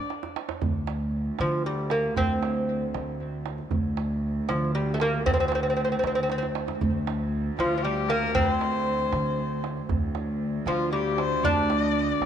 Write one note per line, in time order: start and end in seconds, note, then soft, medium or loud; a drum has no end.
0.10 tombak tek soft
0.23 tombak ka medium
0.36 tombak tek medium
0.49 tombak ka medium
0.61 1.29 D2 medium
0.61 3.71 D2 soft
0.61 tombak dum medium
0.87 tombak tek medium
1.39 2.07 D3 medium
1.39 1.66 F3 medium
1.39 tombak tek medium
1.65 1.92 G3 medium
1.65 tombak ka soft
1.90 2.17 A#3 medium
1.90 tombak tek medium
2.04 tombak ka soft
2.16 2.84 D2 medium
2.16 3.42 C4 medium
2.16 tombak dum medium
2.43 tombak tek medium
2.94 3.62 D3 medium
2.94 tombak tek medium
3.20 tombak ka soft
3.46 tombak tek medium
3.58 tombak ka soft
3.71 4.39 D2 medium
3.71 6.81 D2 medium
3.71 tombak dum medium
3.97 tombak tek medium
4.49 5.16 D3 medium
4.49 4.74 F3 medium
4.49 tombak tek medium
4.75 4.95 G3 medium
4.75 tombak ka soft
4.94 5.00 A3 medium
5.00 5.26 A#3 medium
5.00 tombak tek medium
5.13 tombak ka soft
5.26 5.93 D2 medium
5.26 5.32 C4 medium
5.26 tombak dum medium
5.34 5.39 C4 medium
5.40 5.47 C4 medium
5.48 5.54 C4 medium
5.48 tombak tek medium
5.55 5.62 C4 medium
5.63 5.69 C4 medium
5.70 5.75 C4 medium
5.77 5.83 C4 medium
5.85 5.91 C4 medium
5.92 5.98 C4 medium
5.99 6.70 D3 medium
5.99 6.06 C4 medium
6.04 6.14 C4 medium
6.04 tombak tek medium
6.15 6.22 C4 medium
6.23 6.30 C4 medium
6.30 6.37 C4 medium
6.30 tombak tek medium
6.38 6.45 C4 medium
6.43 tombak ka medium
6.55 tombak tek medium
6.68 tombak ka medium
6.81 7.48 D2 medium
6.81 9.88 D2 medium
6.81 tombak dum medium
7.07 tombak tek medium
7.58 8.25 D3 medium
7.58 7.76 F3 medium
7.58 7.84 F4 medium
7.58 tombak tek medium
7.78 7.84 F3 medium
7.83 8.11 G3 medium
7.83 8.10 G4 medium
8.09 8.34 A#3 medium
8.09 8.36 A#4 medium
8.09 tombak tek medium
8.23 tombak ka soft
8.35 9.03 D2 medium
8.35 9.60 C4 loud
8.35 9.64 C5 medium
8.35 tombak dum medium
8.61 tombak tek medium
9.12 9.80 D3 medium
9.12 tombak tek medium
9.38 tombak ka soft
9.64 tombak tek medium
9.77 tombak ka soft
9.89 10.57 D2 medium
9.89 12.26 D2 medium
9.89 tombak dum medium
10.15 tombak tek medium
10.66 11.33 D3 medium
10.66 10.92 F3 medium
10.66 10.91 F4 medium
10.66 tombak tek medium
10.93 11.46 G3 medium
10.93 11.19 G4 medium
10.93 tombak ka soft
11.18 11.45 C5 medium
11.18 tombak tek medium
11.32 tombak ka soft
11.43 12.11 D2 medium
11.43 12.26 D4 loud
11.43 12.26 D5 medium
11.43 tombak dum medium
11.70 tombak tek medium
12.21 12.26 D3 medium
12.21 tombak tek medium